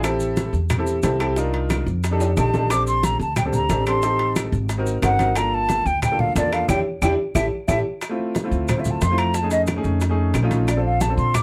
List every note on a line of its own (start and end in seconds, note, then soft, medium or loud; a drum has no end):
0.00 0.48 A1 medium
0.00 0.50 C4 medium
0.00 0.51 E4 medium
0.00 high conga soft
0.00 high timbale medium
0.00 maracas medium
0.04 0.51 G4 medium
0.04 0.51 A4 loud
0.04 high bongo medium
0.04 claves medium
0.20 high conga soft
0.20 maracas medium
0.37 high bongo medium
0.37 high conga loud
0.37 high timbale medium
0.37 low timbale medium
0.37 maracas medium
0.53 1.00 E2 medium
0.53 high conga soft
0.53 maracas soft
0.70 high bongo medium
0.70 high conga soft
0.70 low conga medium
0.70 high timbale loud
0.70 claves medium
0.70 maracas medium
0.78 0.96 C4 medium
0.78 0.96 E4 medium
0.78 0.96 G4 medium
0.78 0.97 A4 medium
0.87 high conga soft
0.87 maracas medium
1.03 1.81 C2 medium
1.03 1.15 C4 medium
1.03 1.15 E4 medium
1.03 1.15 G4 medium
1.03 1.16 A4 loud
1.03 high bongo medium
1.03 low bongo medium
1.03 high conga medium
1.03 high timbale medium
1.03 low timbale medium
1.03 maracas medium
1.19 1.32 C4 medium
1.19 1.32 E4 medium
1.19 1.32 G4 medium
1.19 1.32 A4 loud
1.19 high timbale medium
1.19 claves medium
1.19 maracas soft
1.36 1.83 D4 medium
1.36 1.84 D#4 medium
1.36 1.84 F4 medium
1.36 1.84 A#4 loud
1.36 high bongo medium
1.36 high conga soft
1.36 maracas medium
1.53 high bongo soft
1.53 high conga soft
1.53 high timbale medium
1.70 high bongo medium
1.70 high conga medium
1.70 high timbale medium
1.70 low timbale medium
1.70 claves medium
1.70 maracas medium
1.86 2.33 F2 medium
1.86 high bongo soft
1.86 high conga soft
1.86 maracas soft
2.04 high bongo medium
2.04 high conga soft
2.04 high timbale medium
2.04 maracas medium
2.11 2.29 D4 medium
2.11 2.29 D#4 medium
2.11 2.30 G4 medium
2.11 2.30 A4 medium
2.20 high conga soft
2.20 high timbale medium
2.20 maracas medium
2.36 3.14 A#1 medium
2.36 2.48 D4 medium
2.36 2.49 D#4 medium
2.36 2.49 G4 medium
2.36 2.49 A4 medium
2.36 2.72 A5 loud
2.36 high bongo medium
2.36 low bongo medium
2.36 high conga medium
2.36 low timbale medium
2.36 claves medium
2.36 maracas medium
2.53 2.65 D4 medium
2.53 2.65 D#4 medium
2.53 2.66 G4 medium
2.53 2.66 A4 medium
2.53 high bongo soft
2.53 high conga medium
2.53 low timbale medium
2.53 maracas soft
2.70 3.17 C4 medium
2.70 3.17 D4 medium
2.70 3.17 G4 medium
2.70 3.17 A4 medium
2.70 2.87 D6 loud
2.70 high bongo medium
2.70 high conga soft
2.70 high timbale medium
2.70 claves medium
2.70 maracas medium
2.87 3.06 C6 medium
2.87 high conga soft
2.87 maracas medium
3.03 3.21 A#5 medium
3.03 high bongo medium
3.03 high conga medium
3.03 high timbale medium
3.03 low timbale medium
3.03 maracas medium
3.19 3.66 D2 medium
3.19 3.36 A5 medium
3.19 high conga soft
3.19 maracas soft
3.36 3.44 G5 medium
3.36 high bongo medium
3.36 high conga soft
3.36 low conga medium
3.36 high timbale medium
3.36 claves medium
3.36 maracas medium
3.45 3.62 C4 medium
3.45 3.62 D4 medium
3.45 3.63 G4 medium
3.45 3.63 A4 medium
3.53 3.85 A#5 medium
3.53 high conga soft
3.53 low conga medium
3.53 maracas medium
3.69 4.47 A1 medium
3.69 3.81 C4 medium
3.69 3.82 D4 medium
3.69 3.82 G4 medium
3.69 3.82 A4 medium
3.69 high bongo medium
3.69 low bongo medium
3.69 high conga medium
3.69 high timbale medium
3.69 low timbale medium
3.69 maracas medium
3.86 3.98 C4 medium
3.86 3.98 D4 medium
3.86 3.99 G4 medium
3.86 3.99 A4 medium
3.86 4.33 C6 medium
3.86 high conga soft
3.86 high timbale medium
3.86 claves medium
3.86 maracas soft
4.02 4.49 C4 medium
4.02 4.50 D#4 medium
4.02 4.50 G4 medium
4.02 4.50 A4 medium
4.02 high bongo medium
4.02 high conga soft
4.02 maracas medium
4.19 high bongo soft
4.19 high conga soft
4.19 high timbale medium
4.36 high bongo medium
4.36 high conga medium
4.36 high timbale medium
4.36 low timbale medium
4.36 claves medium
4.36 maracas medium
4.52 4.99 G#1 medium
4.52 high bongo soft
4.52 high conga soft
4.52 maracas soft
4.69 high bongo medium
4.69 high conga soft
4.69 high timbale medium
4.69 maracas medium
4.77 4.95 C4 medium
4.77 4.95 D#4 medium
4.77 4.95 F#4 medium
4.77 4.96 A#4 medium
4.86 high conga soft
4.86 maracas medium
5.02 5.80 G1 medium
5.02 5.14 C4 medium
5.02 5.15 D#4 medium
5.02 5.15 F#4 medium
5.02 5.15 A#4 medium
5.02 5.39 F#5 loud
5.02 high bongo medium
5.02 low bongo medium
5.02 high conga medium
5.02 high timbale medium
5.02 low timbale medium
5.02 claves medium
5.02 maracas medium
5.19 5.31 C4 medium
5.19 5.31 D#4 medium
5.19 5.31 F#4 medium
5.19 5.32 A#4 medium
5.19 high bongo soft
5.19 high conga medium
5.19 high timbale medium
5.19 maracas soft
5.35 5.82 A#3 medium
5.35 5.83 D4 medium
5.35 5.83 F4 medium
5.35 5.83 A4 medium
5.35 5.56 A#5 loud
5.35 high bongo medium
5.35 high conga soft
5.35 high timbale medium
5.35 claves medium
5.35 maracas medium
5.53 5.88 A5 loud
5.53 high conga soft
5.69 high bongo medium
5.69 high conga medium
5.69 high timbale medium
5.69 low timbale medium
5.69 maracas medium
5.86 6.32 D2 medium
5.86 6.03 G5 medium
5.86 high conga soft
5.86 maracas soft
6.02 6.22 G5 loud
6.02 high bongo medium
6.02 high conga soft
6.02 low conga medium
6.02 high timbale medium
6.02 claves medium
6.02 maracas medium
6.10 6.28 A#3 medium
6.10 6.28 D4 medium
6.10 6.29 F4 medium
6.10 6.29 A4 medium
6.19 6.36 F5 medium
6.19 high conga soft
6.19 low conga medium
6.35 6.67 E2 medium
6.35 6.47 A#3 medium
6.35 6.47 D4 medium
6.35 6.48 F4 medium
6.35 6.48 A4 medium
6.35 6.55 D5 loud
6.35 high bongo medium
6.35 low bongo medium
6.35 high conga medium
6.35 high timbale medium
6.35 low timbale medium
6.35 maracas medium
6.51 6.63 A#3 medium
6.51 6.64 D4 medium
6.51 6.64 F4 medium
6.51 6.64 A4 medium
6.51 6.69 F5 medium
6.51 high conga soft
6.51 high timbale medium
6.51 claves medium
6.51 maracas soft
6.68 6.81 E2 medium
6.68 6.79 D4 medium
6.68 6.79 E4 medium
6.68 6.79 G4 medium
6.68 6.80 G5 medium
6.68 high bongo loud
6.68 high conga loud
6.68 high timbale medium
6.68 claves loud
6.68 maracas loud
7.02 7.14 E2 medium
7.02 7.13 D4 loud
7.02 7.13 E4 loud
7.02 7.13 G4 loud
7.02 7.13 G5 medium
7.02 high bongo medium
7.02 high conga loud
7.02 high timbale loud
7.02 claves loud
7.02 maracas loud
7.35 7.48 A1 medium
7.35 7.46 E4 medium
7.35 7.46 G4 medium
7.35 7.46 A4 medium
7.35 7.46 E5 medium
7.35 high bongo loud
7.35 high conga medium
7.35 high timbale medium
7.35 claves loud
7.35 maracas loud
7.68 7.81 A1 medium
7.68 7.80 E4 medium
7.68 7.80 G4 medium
7.68 7.80 A4 medium
7.68 7.79 E5 loud
7.68 high bongo medium
7.68 high conga loud
7.68 high timbale loud
7.68 claves medium
7.68 maracas loud
8.01 high bongo medium
8.01 high conga soft
8.01 high timbale medium
8.01 claves medium
8.01 maracas medium
8.09 8.33 A3 medium
8.09 8.33 C4 medium
8.09 8.34 E4 medium
8.09 8.34 F4 medium
8.19 high conga soft
8.35 high bongo medium
8.35 high conga medium
8.35 high timbale medium
8.35 low timbale medium
8.35 maracas medium
8.44 8.67 A3 medium
8.44 8.67 C4 medium
8.44 8.67 E4 medium
8.44 8.68 F4 medium
8.51 8.98 D2 medium
8.51 high conga soft
8.51 maracas soft
8.68 8.81 C5 medium
8.68 high bongo medium
8.68 high conga soft
8.68 low conga medium
8.68 high timbale medium
8.68 claves medium
8.68 maracas medium
8.77 9.00 A3 medium
8.77 9.00 C4 medium
8.77 9.00 E4 medium
8.77 9.01 F4 medium
8.77 8.92 E5 medium
8.85 high conga soft
8.85 low conga medium
8.85 maracas medium
8.91 9.04 A5 medium
9.01 9.79 F2 medium
9.01 9.20 C6 medium
9.01 high bongo medium
9.01 low bongo medium
9.01 high conga medium
9.01 high timbale medium
9.01 low timbale medium
9.01 maracas medium
9.10 9.33 A3 medium
9.10 9.34 C4 medium
9.10 9.34 E4 medium
9.10 9.34 F4 medium
9.18 9.37 A#5 medium
9.18 high conga soft
9.18 high timbale medium
9.18 claves medium
9.18 maracas soft
9.34 9.51 A5 medium
9.34 high bongo medium
9.34 high conga soft
9.34 maracas medium
9.42 9.66 A3 medium
9.42 9.67 C#4 medium
9.42 9.67 D#4 medium
9.42 9.67 G#4 medium
9.51 9.62 D#5 medium
9.51 high bongo soft
9.51 high conga soft
9.51 high timbale medium
9.51 maracas medium
9.67 high bongo medium
9.67 high conga medium
9.67 high timbale medium
9.67 low timbale medium
9.67 claves medium
9.67 maracas medium
9.76 10.00 A3 medium
9.76 10.00 C#4 medium
9.76 10.00 D#4 medium
9.76 10.01 G#4 medium
9.84 10.31 F2 medium
9.84 high bongo soft
9.84 maracas soft
10.01 high bongo medium
10.01 high conga soft
10.01 high timbale medium
10.01 maracas medium
10.09 10.33 A3 medium
10.09 10.33 C#4 medium
10.09 10.34 D#4 medium
10.09 10.34 G#4 medium
10.18 high conga soft
10.34 11.12 A#1 medium
10.34 high bongo medium
10.34 low bongo medium
10.34 high conga medium
10.34 high timbale medium
10.34 low timbale medium
10.34 claves medium
10.34 maracas medium
10.43 10.66 A3 medium
10.43 10.66 C#4 medium
10.43 10.67 D#4 medium
10.43 10.67 F4 loud
10.51 high bongo soft
10.51 high conga medium
10.51 high timbale medium
10.51 maracas soft
10.68 10.84 D5 medium
10.68 high bongo medium
10.68 high conga soft
10.68 high timbale medium
10.68 claves medium
10.68 maracas medium
10.76 11.00 C4 medium
10.76 11.00 D4 medium
10.76 11.00 F4 medium
10.76 11.00 A4 medium
10.84 11.03 F5 medium
10.84 high conga soft
11.01 11.17 A5 medium
11.01 high bongo medium
11.01 high conga medium
11.01 high timbale medium
11.01 low timbale medium
11.01 maracas medium
11.09 11.33 C4 medium
11.09 11.33 D4 medium
11.09 11.33 F4 medium
11.09 11.33 A4 medium
11.17 11.43 A#2 medium
11.17 11.37 C6 medium
11.17 high conga soft
11.17 maracas soft
11.34 11.43 D6 loud
11.34 high bongo medium
11.34 high conga soft
11.34 low conga medium
11.34 high timbale medium
11.34 claves medium
11.34 maracas medium